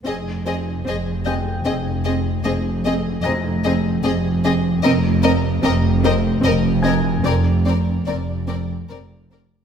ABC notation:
X:1
M:3/4
L:1/8
Q:1/4=75
K:Fm
V:1 name="Grand piano"
z3 [gg']3- | [gg']2 [bb']4- | [bb']2 z3 [aa']- | [aa']4- [aa'] z |]
V:2 name="Violin section"
e e e e e e | e e e e e e | e e e e e e | =d d d d d d |]
V:3 name="Violin section"
A A A A A A | A A A A A A | B B B B B B | B B B B B B |]
V:4 name="Viola section"
C C C C C C | C C C C C C | C C C C C C | C C C C C C |]
V:5 name="Cello section" clef=bass
F,,2 F,,2 F,,2 | F,,2 F,,2 F,,2 | F,,2 F,,2 F,,2 | F,,2 F,,2 F,,2 |]
V:6 name="Double bass section" clef=bass
F,,,2 F,,,2 F,,,2 | F,,,2 F,,,2 F,,,2 | F,,,2 F,,,2 F,,,2 | F,,,2 F,,,2 F,,,2 |]